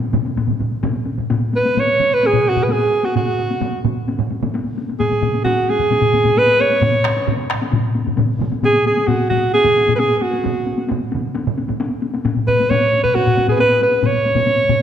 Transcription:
0.02 taiko high soft
0.13 taiko low-mid medium
0.13 taiko mid loud
0.13 taiko high medium
0.25 taiko high soft
0.37 taiko low-mid medium
0.37 taiko mid medium
0.37 taiko high medium
0.48 taiko low-mid medium
0.48 taiko mid medium
0.48 taiko high soft
0.60 taiko low-mid medium
0.60 taiko mid medium
0.60 taiko high medium
0.72 taiko high soft
0.83 taiko low-mid loud
0.83 taiko mid medium
0.83 taiko high medium
1.06 taiko high soft
1.18 taiko low-mid medium
1.18 taiko mid medium
1.30 taiko low-mid loud
1.30 taiko high medium
1.53 1.81 B4 medium
1.53 taiko high medium
1.66 taiko high medium
1.77 2.15 C#5 medium
1.77 taiko low-mid medium
1.77 taiko high medium
1.99 taiko low-mid medium
1.99 taiko high soft
2.14 2.28 B4 medium
2.23 2.50 G#4 medium
2.23 taiko high medium
2.33 taiko low-mid loud
2.46 2.65 F#4 medium
2.46 taiko high soft
2.57 taiko low-mid medium
2.57 taiko high soft
2.63 2.73 B4 medium
2.69 3.07 G#4 medium
2.69 taiko high medium
3.03 3.16 F#4 medium
3.03 taiko high soft
3.15 3.81 F#4 medium
3.15 taiko mid medium
3.15 taiko high medium
3.39 taiko high soft
3.50 taiko high soft
3.62 taiko mid medium
3.62 taiko high medium
3.85 taiko mid medium
3.85 taiko high soft
4.08 taiko high medium
4.20 taiko mid medium
4.32 taiko high soft
4.43 taiko mid medium
4.43 taiko high soft
4.54 taiko high medium
4.78 taiko high soft
4.89 taiko high soft
5.00 5.42 G#4 medium
5.00 taiko low-mid medium
5.00 taiko high medium
5.12 taiko low-mid medium
5.22 taiko low-mid medium
5.22 taiko high medium
5.34 taiko high medium
5.44 5.71 F#4 medium
5.44 taiko low-mid medium
5.44 taiko high medium
5.69 6.40 G#4 medium
5.69 taiko high medium
5.79 taiko low-mid medium
5.90 taiko low-mid medium
5.90 taiko high medium
6.02 taiko low-mid medium
6.13 taiko low-mid medium
6.13 taiko high medium
6.25 taiko low-mid medium
6.25 taiko high medium
6.37 6.62 B4 loud
6.37 taiko high medium
6.60 7.29 C#5 medium
6.60 taiko high medium
6.71 taiko high medium
6.81 taiko low-mid loud
6.81 taiko mid medium
6.81 taiko high medium
7.04 taiko rim medium
7.04 taiko high medium
7.17 taiko high medium
7.27 taiko low-mid medium
7.27 taiko mid medium
7.27 taiko high medium
7.50 taiko rim medium
7.62 taiko high medium
7.72 taiko low-mid loud
7.72 taiko mid medium
7.72 taiko high medium
7.95 taiko high medium
8.06 taiko low-mid medium
8.06 taiko mid medium
8.06 taiko high medium
8.18 taiko low-mid medium
8.18 taiko mid medium
8.18 taiko high medium
8.39 taiko low-mid medium
8.39 taiko mid loud
8.39 taiko high soft
8.52 taiko high medium
8.63 8.86 G#4 loud
8.63 taiko low-mid loud
8.63 taiko high medium
8.86 9.09 G#4 medium
8.86 taiko high medium
8.97 taiko high medium
9.07 9.29 F#4 medium
9.07 taiko low-mid medium
9.07 taiko high medium
9.29 9.52 F#4 medium
9.29 taiko low-mid medium
9.29 taiko high soft
9.54 9.91 G#4 medium
9.54 taiko high medium
9.66 taiko low-mid loud
9.77 taiko high soft
9.88 taiko low-mid medium
9.88 taiko high soft
9.96 10.17 G#4 medium
9.96 10.01 B4 medium
9.96 taiko high medium
10.17 10.23 G#4 medium
10.21 10.90 F#4 medium
10.21 taiko high soft
10.33 taiko high soft
10.44 taiko mid loud
10.44 taiko high medium
10.67 taiko high soft
10.78 taiko high medium
10.88 taiko mid medium
10.88 taiko high medium
11.12 taiko mid medium
11.12 taiko high medium
11.35 taiko high medium
11.47 taiko mid medium
11.58 taiko high medium
11.68 taiko mid medium
11.68 taiko high medium
11.80 taiko high medium
12.02 taiko high medium
12.14 taiko high medium
12.25 taiko low-mid medium
12.25 taiko high medium
12.37 taiko low-mid medium
12.47 12.71 B4 medium
12.47 taiko low-mid loud
12.47 taiko high medium
12.60 taiko high medium
12.70 13.03 C#5 loud
12.70 taiko low-mid medium
12.70 taiko high medium
12.93 taiko high medium
13.03 13.16 B4 medium
13.03 taiko low-mid medium
13.15 13.48 F#4 medium
13.15 taiko low-mid medium
13.15 taiko high medium
13.27 taiko low-mid medium
13.37 taiko low-mid medium
13.37 taiko high soft
13.48 13.52 G#4 medium
13.48 13.56 B4 medium
13.48 taiko low-mid medium
13.48 taiko high soft
13.54 13.59 G#4 medium
13.59 13.80 B4 loud
13.59 taiko high medium
13.80 14.07 B4 medium
13.80 taiko high soft
13.91 taiko high soft
14.03 14.82 C#5 medium
14.03 taiko low-mid loud
14.03 taiko mid medium
14.03 taiko high medium
14.25 taiko high soft
14.35 taiko low-mid medium
14.35 taiko mid medium
14.35 taiko high soft
14.47 taiko high medium
14.69 taiko low-mid medium
14.69 taiko mid loud
14.69 taiko high soft

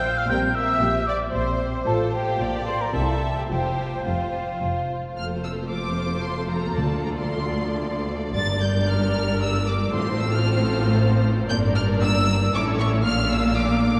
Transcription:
0.00 0.21 A#1 medium
0.00 0.21 A#2 medium
0.00 0.29 F4 soft
0.00 0.30 C5 medium
0.00 0.16 G5 medium
0.00 0.19 G6 medium
0.17 0.29 F5 medium
0.17 0.31 F6 medium
0.29 0.73 A#1 medium
0.29 0.73 A#2 medium
0.29 0.48 G3 medium
0.29 0.54 C4 medium
0.29 0.47 C4 soft
0.29 0.81 A#4 medium
0.29 0.39 G5 medium
0.29 0.56 G6 medium
0.55 0.79 C4 soft
0.55 1.06 E5 medium
0.55 1.08 E6 medium
0.81 1.25 A#1 medium
0.81 1.25 A#2 medium
0.81 1.06 C4 medium
0.81 1.34 G4 medium
1.07 1.32 C4 soft
1.07 1.17 D5 medium
1.07 1.33 D6 medium
1.33 1.78 A#1 medium
1.33 1.78 A#2 soft
1.33 1.59 C4 medium
1.33 2.38 C5 medium
1.33 1.60 C5 soft
1.33 1.59 C6 medium
1.61 1.86 C4 soft
1.86 2.31 A1 medium
1.86 2.31 A2 medium
1.86 2.06 A3 medium
1.86 2.05 F4 soft
1.86 2.12 F4 soft
1.86 2.12 A4 medium
1.86 1.93 A5 medium
2.14 2.38 F4 soft
2.14 2.67 G4 medium
2.14 2.66 G5 medium
2.39 2.85 A#1 medium
2.39 2.85 A#2 medium
2.39 2.59 A#3 soft
2.39 2.58 F4 soft
2.39 2.66 F4 soft
2.39 2.95 D5 medium
2.66 2.94 F4 soft
2.66 2.81 C5 medium
2.66 2.83 C6 medium
2.81 2.95 A#4 soft
2.81 2.95 A#5 medium
2.93 3.41 C2 medium
2.93 3.41 C3 soft
2.93 3.13 A#3 soft
2.93 3.13 E4 soft
2.93 3.21 E4 soft
2.93 3.36 A4 soft
2.93 3.51 E5 soft
2.93 3.36 A5 medium
3.23 3.50 E4 soft
3.37 3.43 G4 soft
3.37 3.43 G5 soft
3.50 3.97 F1 medium
3.50 3.97 F2 soft
3.50 3.70 A3 soft
3.50 3.70 F4 soft
3.50 3.78 F4 soft
3.50 4.05 G4 soft
3.50 4.87 C5 medium
3.50 4.08 G5 medium
3.79 4.04 F4 soft
4.06 4.52 F1 soft
4.06 4.53 F2 medium
4.06 4.33 F4 soft
4.06 4.87 F4 soft
4.06 4.89 F5 medium
4.34 4.60 F4 soft
4.61 5.07 F1 soft
4.61 5.08 F2 soft
4.61 4.88 F4 soft
4.89 5.16 F4 soft
5.16 6.73 F1 medium
5.16 6.73 F2 soft
5.16 8.32 A3 medium
5.16 8.32 F4 medium
5.16 8.32 A4 soft
5.16 6.74 C5 soft
5.16 5.25 F6 medium
5.44 5.52 E6 medium
5.71 6.23 D6 medium
6.24 6.51 C6 medium
6.51 6.77 A#5 medium
6.77 8.36 D2 medium
6.77 7.52 D3 medium
6.77 9.91 D5 soft
6.77 7.04 A5 medium
7.04 7.10 A#5 medium
7.17 8.08 C6 medium
8.35 9.94 G1 medium
8.35 9.94 G2 medium
8.35 9.90 G3 medium
8.35 9.90 D4 medium
8.35 9.90 A#4 medium
8.35 8.60 A6 medium
8.62 8.89 G6 medium
8.89 9.41 F6 medium
9.42 9.68 E6 medium
9.68 9.94 D6 medium
9.94 11.46 A1 medium
9.94 10.68 A2 medium
9.94 11.47 A2 medium
9.94 11.46 C4 medium
9.94 11.46 F4 medium
9.94 11.46 A4 medium
9.94 11.46 C5 medium
9.94 10.20 C6 medium
10.20 10.33 E6 medium
10.33 11.24 F6 medium
11.49 12.52 G1 medium
11.49 12.52 G2 medium
11.49 12.50 A#3 medium
11.49 12.50 D4 medium
11.49 12.50 A#4 medium
11.49 12.50 D5 medium
11.49 11.58 G6 medium
11.75 11.83 F6 medium
12.02 12.53 E6 loud
12.54 13.04 A1 medium
12.54 13.04 A2 medium
12.54 13.02 C#4 medium
12.54 13.02 E4 medium
12.54 13.02 A4 medium
12.54 13.02 C#5 medium
12.54 12.63 D6 medium
12.80 12.88 C#6 medium
13.05 14.00 A#1 medium
13.05 14.00 A#2 medium
13.05 14.00 A#3 medium
13.05 14.00 D4 medium
13.05 14.00 F4 medium
13.05 14.00 F5 medium
13.05 13.30 F6 loud
13.31 13.57 E6 medium
13.57 14.00 D6 medium

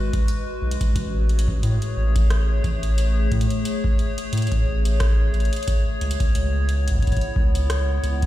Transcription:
0.00 0.92 G#3 medium
0.00 0.92 F#4 medium
0.00 0.92 B4 medium
0.13 kick loud
0.13 closed hi-hat soft
0.28 closed hi-hat medium
0.62 0.77 B1 medium
0.71 closed hi-hat medium
0.81 kick loud
0.81 closed hi-hat soft
0.96 1.59 A1 loud
0.96 6.31 A3 medium
0.96 6.31 G#4 medium
0.96 8.26 C#5 medium
0.96 kick loud
0.96 closed hi-hat medium
1.29 closed hi-hat soft
1.39 closed hi-hat medium
1.48 kick loud
1.63 1.79 A2 medium
1.63 closed hi-hat soft
1.82 closed hi-hat soft
1.97 2.60 A1 medium
2.16 kick loud
2.16 closed hi-hat soft
2.30 cross-stick loud
2.30 closed hi-hat medium
2.64 3.27 A1 medium
2.64 kick loud
2.64 closed hi-hat soft
2.83 closed hi-hat soft
2.98 closed hi-hat medium
3.32 3.47 A2 medium
3.32 kick loud
3.32 closed hi-hat soft
3.41 closed hi-hat medium
3.50 closed hi-hat soft
3.65 closed hi-hat medium
3.84 kick loud
3.99 closed hi-hat soft
4.18 closed hi-hat medium
4.33 4.48 A2 medium
4.33 closed hi-hat soft
4.37 closed hi-hat soft
4.42 closed hi-hat soft
4.47 closed hi-hat soft
4.52 kick loud
4.52 closed hi-hat soft
4.66 5.30 A1 medium
4.85 closed hi-hat medium
5.00 kick loud
5.00 cross-stick loud
5.00 closed hi-hat medium
5.34 5.49 A1 medium
5.34 closed hi-hat soft
5.40 closed hi-hat soft
5.45 closed hi-hat soft
5.53 closed hi-hat soft
5.56 closed hi-hat soft
5.63 closed hi-hat soft
5.68 kick loud
5.68 closed hi-hat medium
6.01 6.17 C#2 medium
6.01 closed hi-hat soft
6.11 closed hi-hat medium
6.20 kick loud
6.20 closed hi-hat soft
6.35 6.98 C#2 loud
6.35 8.26 B3 medium
6.35 8.26 E4 medium
6.35 closed hi-hat medium
6.69 closed hi-hat soft
6.88 kick soft
6.88 closed hi-hat medium
6.91 kick soft
6.95 kick medium
6.99 7.18 G#1 medium
6.99 kick medium
7.02 kick medium
7.02 closed hi-hat soft
7.07 kick medium
7.07 closed hi-hat soft
7.12 kick medium
7.12 closed hi-hat soft
7.17 kick medium
7.17 closed hi-hat soft
7.21 closed hi-hat soft
7.36 7.99 C#2 medium
7.36 kick loud
7.55 closed hi-hat medium
7.70 cross-stick loud
7.70 closed hi-hat medium
8.04 8.26 C#2 medium
8.04 closed hi-hat soft
8.22 kick loud
8.22 closed hi-hat soft

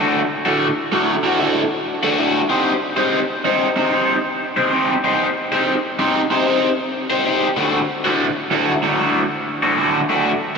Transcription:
0.00 0.19 A2 medium
0.00 0.19 D3 medium
0.00 0.19 A3 loud
0.00 0.19 F#4 medium
0.45 0.67 A2 medium
0.45 0.67 D3 medium
0.45 0.66 A3 medium
0.45 0.66 F#4 medium
0.92 1.13 A2 medium
0.92 1.14 D3 medium
0.92 1.14 A3 medium
0.92 1.14 F#4 medium
1.23 1.40 A2 medium
1.23 1.39 D3 medium
1.23 1.39 A3 medium
1.23 1.38 F#4 medium
1.40 1.61 A2 medium
1.40 1.61 D3 medium
1.40 1.61 A3 loud
1.40 1.61 F#4 medium
2.03 2.17 A2 medium
2.03 2.18 D3 medium
2.03 2.18 A3 medium
2.03 2.18 F#4 medium
2.18 2.39 A2 medium
2.18 2.40 D3 medium
2.18 2.40 A3 medium
2.18 2.40 F#4 medium
2.49 2.71 C4 medium
2.49 2.71 D#4 medium
2.49 2.71 G4 medium
2.49 2.71 C5 medium
2.97 3.19 C4 medium
2.97 3.19 D#4 medium
2.97 3.19 G4 medium
2.97 3.18 C5 loud
3.45 3.66 C4 medium
3.45 3.66 D#4 medium
3.45 3.66 G4 medium
3.45 3.67 C5 medium
3.76 3.92 C4 medium
3.76 3.92 D#4 medium
3.76 3.92 G4 medium
3.76 3.91 C5 medium
3.92 4.14 C4 medium
3.92 4.14 D#4 medium
3.92 4.14 G4 loud
3.92 4.13 C5 loud
4.57 4.70 C4 medium
4.57 4.71 D#4 medium
4.57 4.71 G4 medium
4.57 4.71 C5 medium
4.71 4.92 C4 medium
4.71 4.93 D#4 medium
4.71 4.93 G4 medium
4.71 4.93 C5 medium
5.04 5.25 C4 medium
5.04 5.25 D#4 medium
5.04 5.25 G4 medium
5.04 5.25 C5 loud
5.52 5.73 C4 medium
5.52 5.73 D#4 medium
5.52 5.73 G4 medium
5.52 5.72 C5 loud
5.99 6.19 C4 medium
5.99 6.20 D#4 medium
5.99 6.20 G4 medium
5.99 6.20 C5 medium
6.31 6.46 C4 medium
6.31 6.47 D#4 medium
6.31 6.47 G4 medium
6.31 6.46 C5 medium
6.47 6.68 C4 medium
6.47 6.68 D#4 medium
6.47 6.68 G4 medium
6.47 6.67 C5 medium
7.10 7.24 C4 medium
7.10 7.25 D#4 medium
7.10 7.25 G4 medium
7.10 7.25 C5 loud
7.25 7.46 C4 medium
7.25 7.46 D#4 medium
7.25 7.46 G4 medium
7.25 7.47 C5 medium
7.57 7.77 A2 medium
7.57 7.78 D3 loud
7.57 7.78 A3 medium
7.57 7.78 F#4 medium
8.04 8.26 A2 medium
8.04 8.26 D3 medium
8.04 8.25 A3 medium
8.04 8.25 F#4 medium
8.51 8.72 A2 medium
8.51 8.72 D3 medium
8.51 8.73 A3 medium
8.51 8.73 F#4 loud
8.83 8.99 A2 medium
8.83 8.99 D3 medium
8.83 8.99 A3 medium
8.83 8.98 F#4 medium
8.99 9.21 A2 medium
8.99 9.20 D3 medium
8.99 9.20 A3 medium
8.99 9.20 F#4 loud
9.63 9.76 A2 medium
9.63 9.78 D3 medium
9.63 9.78 A3 medium
9.63 9.78 F#4 medium
9.78 9.98 A2 medium
9.78 9.99 D3 medium
9.78 9.99 A3 medium
9.78 9.99 F#4 medium
10.10 10.30 A2 medium
10.10 10.30 D3 medium
10.10 10.31 A3 medium
10.10 10.31 F#4 loud

